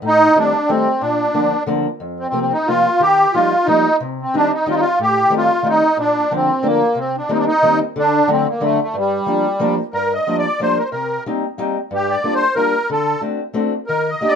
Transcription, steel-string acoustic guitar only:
0.02 0.27 A2 medium
0.35 0.53 D#3 medium
0.35 0.53 G3 soft
0.35 0.53 A3 medium
0.35 0.53 C4 medium
0.69 0.86 D#3 medium
0.69 0.86 G3 medium
0.69 0.87 A3 medium
0.69 0.86 C4 medium
1.01 1.26 A#2 medium
1.34 1.52 D3 soft
1.34 1.52 F3 soft
1.34 1.52 A#3 medium
1.34 1.52 D4 medium
1.66 1.85 D3 medium
1.66 1.85 F3 medium
1.66 1.85 A#3 medium
1.66 1.86 D4 medium
2.00 2.26 F2 medium
2.32 2.51 C3 medium
2.32 2.51 F3 soft
2.32 2.51 A#3 soft
2.32 2.51 C4 medium
2.68 2.85 C3 medium
2.68 2.85 F3 soft
2.68 2.85 A#3 medium
2.68 2.86 C4 medium
3.00 3.25 D#3 medium
3.34 3.52 F3 medium
3.34 3.52 G3 medium
3.34 3.52 A#3 soft
3.34 3.52 D#4 medium
3.67 3.84 F3 medium
3.67 3.85 G3 medium
3.67 3.85 A#3 medium
3.67 3.85 D#4 medium
4.00 4.25 C3 medium
4.34 4.51 D#3 medium
4.34 4.51 G3 medium
4.34 4.51 C4 medium
4.34 4.51 D#4 medium
4.66 4.83 D#3 medium
4.66 4.84 G3 medium
4.66 4.84 C4 medium
4.66 4.84 D#4 medium
4.99 5.24 A2 medium
5.30 5.49 D#3 medium
5.30 5.49 G3 medium
5.30 5.48 A3 medium
5.30 5.49 C4 medium
5.62 5.81 D#3 medium
5.62 5.82 G3 soft
5.62 5.82 A3 soft
5.62 5.82 C4 medium
5.97 6.22 A#2 medium
6.31 6.49 D3 soft
6.31 6.49 F3 medium
6.31 6.49 A#3 soft
6.31 6.49 D4 medium
6.63 6.81 D3 soft
6.63 6.81 F3 medium
6.63 6.81 A#3 soft
6.63 6.81 D4 medium
6.95 7.21 C3 medium
7.29 7.47 D#3 medium
7.29 7.47 G3 medium
7.29 7.47 A#3 medium
7.29 7.47 C4 medium
7.62 7.80 D#3 medium
7.62 7.80 G3 medium
7.62 7.80 A#3 medium
7.62 7.81 C4 medium
7.96 8.20 D3 medium
8.27 8.45 D3 medium
8.27 8.45 F#3 medium
8.27 8.46 A3 medium
8.27 8.46 D4 medium
8.60 8.78 D3 medium
8.60 8.78 F#3 medium
8.60 8.78 A3 soft
8.60 8.79 D4 medium
8.94 9.18 G2 medium
9.26 9.44 F3 medium
9.26 9.44 G3 soft
9.26 9.44 A#3 soft
9.26 9.45 D4 medium
9.59 9.77 F3 medium
9.59 9.78 G3 medium
9.59 9.78 A#3 medium
9.59 9.78 D4 medium
9.93 10.18 G2 medium
10.27 10.44 F3 medium
10.27 10.44 G3 soft
10.27 10.45 A#3 soft
10.27 10.45 D4 medium
10.60 10.77 F3 medium
10.60 10.77 G3 soft
10.60 10.77 A#3 soft
10.60 10.78 D4 medium
10.92 11.17 C3 medium
11.26 11.43 G3 medium
11.26 11.43 A#3 soft
11.26 11.44 C4 medium
11.26 11.43 D#4 medium
11.58 11.76 G3 medium
11.58 11.75 A#3 medium
11.58 11.76 C4 medium
11.58 11.76 D#4 medium
11.91 12.15 G2 medium
12.24 12.41 G3 medium
12.24 12.41 A#3 medium
12.24 12.42 D4 medium
12.24 12.42 F4 medium
12.56 12.73 G3 medium
12.56 12.74 A#3 medium
12.56 12.73 D4 medium
12.56 12.74 F4 medium
12.90 13.14 D3 medium
13.21 13.39 A3 medium
13.21 13.39 C4 soft
13.21 13.39 D4 soft
13.21 13.39 F#4 medium
13.54 13.72 A3 medium
13.54 13.72 C4 medium
13.54 13.72 D4 medium
13.54 13.72 F#4 medium
13.89 14.14 D#3 medium
14.21 14.36 A#3 medium
14.21 14.36 D4 soft
14.21 14.36 D#4 soft
14.21 14.36 G4 medium

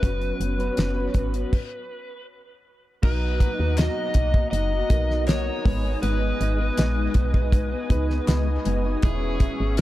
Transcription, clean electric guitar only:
0.01 0.58 F#3 medium
0.01 0.59 B3 medium
0.01 0.59 C#4 medium
0.01 0.58 F#4 medium
0.59 0.77 B3 soft
0.59 0.77 C#4 soft
0.59 0.78 F#4 medium
0.77 0.96 F#3 medium
0.77 0.97 B3 medium
0.77 0.96 C#4 medium
0.77 0.95 F#4 medium
0.97 1.14 B3 soft
0.97 1.15 C#4 soft
0.97 1.15 F#4 soft
1.15 1.34 F#3 medium
1.15 1.34 B3 medium
1.15 1.33 C#4 medium
1.15 1.32 F#4 medium
1.33 1.54 B3 soft
1.33 1.53 C#4 soft
1.33 1.52 F#4 soft
3.03 3.40 B2 medium
3.03 3.39 F#3 medium
3.03 3.41 D#4 medium
3.03 3.41 F#4 medium
3.40 3.59 F#3 medium
3.40 3.60 A#3 medium
3.40 3.59 D#4 medium
3.40 3.58 F#4 medium
3.59 3.77 A#3 soft
3.59 3.78 D#4 medium
3.59 3.78 F#4 soft
3.77 4.15 B2 medium
3.77 4.15 F#3 medium
3.77 4.16 A#3 medium
3.77 4.16 D#4 medium
3.77 4.16 F#4 medium
4.16 4.72 F#3 medium
4.16 4.73 A#3 medium
4.16 4.72 D#4 medium
4.16 4.70 F#4 medium
4.72 5.27 A#3 soft
4.72 5.28 D#4 soft
4.72 5.28 F#4 medium
5.28 5.47 B2 medium
5.28 5.47 F#3 medium
5.28 5.47 A#3 medium
5.28 5.46 D#4 medium
5.28 5.45 F#4 medium
5.46 5.65 A#3 soft
5.46 5.65 D#4 soft
5.46 5.65 F#4 medium
5.64 5.84 G#3 medium
5.64 5.84 B3 medium
5.64 5.84 D#4 medium
5.64 5.82 G#4 medium
5.84 6.01 B3 soft
5.84 6.02 D#4 medium
5.84 6.02 G#4 medium
6.02 6.38 G#3 medium
6.02 6.39 B3 medium
6.02 6.40 D#4 loud
6.02 6.41 G#4 medium
6.39 6.59 G#3 medium
6.39 6.59 B3 medium
6.39 6.58 D#4 medium
6.39 6.57 G#4 medium
6.58 6.77 B3 soft
6.58 6.77 D#4 soft
6.58 6.78 G#4 medium
6.77 7.13 G#3 medium
6.77 7.14 B3 medium
6.77 7.15 D#4 loud
6.77 7.15 G#4 loud
7.14 7.71 G#3 medium
7.14 7.72 B3 medium
7.14 7.71 D#4 medium
7.14 7.69 G#4 medium
7.71 8.26 B3 soft
7.71 8.27 D#4 medium
7.71 8.28 G#4 medium
8.27 8.46 G#3 medium
8.27 8.47 B3 medium
8.27 8.47 D#4 medium
8.27 8.45 G#4 medium
8.46 8.64 B3 soft
8.46 8.65 D#4 soft
8.46 8.65 G#4 medium
8.65 8.84 G#3 medium
8.65 8.84 B3 medium
8.65 8.85 D#4 medium
8.65 8.83 G#4 medium
8.84 9.02 B3 soft
8.84 9.04 D#4 medium
8.84 9.03 G#4 medium
9.03 9.40 E3 medium
9.03 9.40 B3 medium
9.03 9.41 C#4 medium
9.03 9.42 G#4 loud
9.41 9.60 E3 medium
9.41 9.60 B3 medium
9.41 9.59 C#4 medium
9.41 9.58 G#4 medium
9.59 9.77 B3 soft
9.59 9.77 C#4 soft
9.59 9.77 G#4 medium
9.77 9.81 E3 medium
9.77 9.81 B3 medium

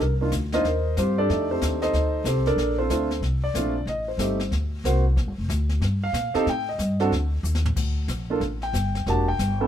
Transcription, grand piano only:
0.02 0.13 A#4 medium
0.21 0.31 A#3 medium
0.21 0.31 D4 medium
0.21 0.32 D#4 soft
0.21 0.32 F4 medium
0.54 0.64 A#3 medium
0.54 0.64 D4 medium
0.54 0.64 D#4 medium
0.54 0.64 F4 medium
0.54 0.94 A#4 medium
0.54 0.95 C5 medium
0.54 0.94 D#5 medium
0.99 1.18 C4 medium
0.99 1.18 F4 medium
0.99 1.17 G4 medium
0.99 1.17 C5 medium
1.18 1.28 D4 medium
1.18 1.29 G4 medium
1.18 1.48 A4 medium
1.18 1.48 D5 medium
1.29 1.78 A3 medium
1.29 1.78 D4 medium
1.29 1.78 D#4 medium
1.29 1.50 G4 medium
1.51 1.91 C4 medium
1.51 1.91 G4 medium
1.51 1.81 A4 medium
1.51 1.81 C5 medium
1.82 2.23 D#4 medium
1.82 2.23 A4 medium
1.82 2.23 C5 medium
1.82 2.23 D#5 medium
2.26 2.46 C4 medium
2.26 2.46 G4 medium
2.26 2.46 A4 medium
2.26 2.46 C5 medium
2.47 2.77 D4 medium
2.47 2.77 A4 medium
2.47 2.77 A#4 medium
2.47 2.77 D5 medium
2.78 2.88 C4 medium
2.78 2.89 F4 medium
2.78 3.20 A4 medium
2.78 3.20 C5 medium
2.90 3.08 A3 medium
2.90 3.08 C4 medium
2.90 3.09 D4 medium
2.90 3.09 F4 medium
3.44 3.85 D5 medium
3.55 3.73 A3 medium
3.55 3.74 C4 medium
3.55 3.74 D4 medium
3.55 3.74 F4 medium
3.89 4.08 D#5 medium
4.08 4.49 C5 medium
4.19 4.38 A3 medium
4.19 4.38 C4 soft
4.19 4.38 D#4 medium
4.19 4.39 G4 medium
4.85 5.03 A#3 medium
4.85 5.03 C4 medium
4.85 5.04 F#4 medium
4.85 5.04 C5 medium
6.04 6.44 F5 medium
6.34 6.45 C4 medium
6.34 6.45 D#4 medium
6.34 6.46 G4 medium
6.34 6.46 A4 medium
6.49 6.68 G5 medium
6.69 7.09 D#5 medium
7.00 7.11 C4 medium
7.00 7.11 D4 medium
7.00 7.11 F#4 medium
7.00 7.11 A4 medium
8.30 8.41 A#3 medium
8.30 8.41 D4 medium
8.30 8.41 F4 medium
8.30 8.41 A4 medium
8.63 9.04 G5 medium
9.08 9.25 A#3 medium
9.08 9.26 D4 medium
9.08 9.26 F#4 medium
9.08 9.26 G4 medium
9.08 9.28 A5 medium
9.28 9.67 G5 medium
9.60 9.67 B3 medium
9.60 9.67 C#4 medium
9.60 9.67 E4 medium
9.60 9.67 A4 medium

